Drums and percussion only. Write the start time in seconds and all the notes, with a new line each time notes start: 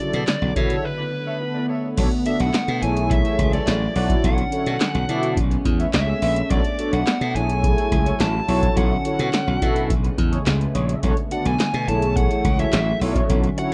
0.13 closed hi-hat
0.27 snare, clap, closed hi-hat
0.56 kick, closed hi-hat
0.70 closed hi-hat
1.97 kick, closed hi-hat, crash
2.12 closed hi-hat
2.26 closed hi-hat
2.40 closed hi-hat
2.54 snare, clap, closed hi-hat
2.68 closed hi-hat
2.83 closed hi-hat
2.97 closed hi-hat
3.11 kick, closed hi-hat
3.25 closed hi-hat
3.39 kick, closed hi-hat
3.53 closed hi-hat
3.67 snare, clap, closed hi-hat
3.96 open hi-hat
4.10 kick, closed hi-hat
4.24 kick, closed hi-hat
4.38 closed hi-hat
4.52 closed hi-hat
4.66 closed hi-hat
4.80 snare, clap, closed hi-hat
4.95 closed hi-hat
5.09 closed hi-hat
5.23 closed hi-hat
5.37 kick, closed hi-hat
5.51 closed hi-hat
5.65 kick, closed hi-hat
5.80 closed hi-hat
5.93 snare, clap, closed hi-hat
6.22 open hi-hat
6.36 closed hi-hat
6.50 kick, closed hi-hat
6.64 closed hi-hat
6.79 closed hi-hat
6.93 closed hi-hat
7.07 snare, clap, closed hi-hat
7.21 closed hi-hat
7.36 closed hi-hat
7.50 closed hi-hat
7.64 kick, closed hi-hat
7.78 closed hi-hat
7.92 kick, closed hi-hat
8.06 closed hi-hat
8.20 snare, clap, closed hi-hat
8.49 open hi-hat
8.62 kick, closed hi-hat
8.77 kick, closed hi-hat
9.05 closed hi-hat
9.19 closed hi-hat
9.33 snare, clap, closed hi-hat
9.62 kick, closed hi-hat
9.76 closed hi-hat
9.90 kick, closed hi-hat
10.04 closed hi-hat
10.18 kick, closed hi-hat
10.33 closed hi-hat
10.46 snare, clap, closed hi-hat
10.61 closed hi-hat
10.75 closed hi-hat
10.89 closed hi-hat
11.03 kick, closed hi-hat
11.17 closed hi-hat
11.31 closed hi-hat
11.46 closed hi-hat
11.60 snare, clap, closed hi-hat
11.74 closed hi-hat
11.88 closed hi-hat
12.02 closed hi-hat
12.16 kick, closed hi-hat
12.31 closed hi-hat
12.44 kick, closed hi-hat
12.59 closed hi-hat
12.73 snare, clap, closed hi-hat
13.01 open hi-hat
13.15 kick, closed hi-hat
13.30 kick, closed hi-hat
13.44 closed hi-hat
13.58 closed hi-hat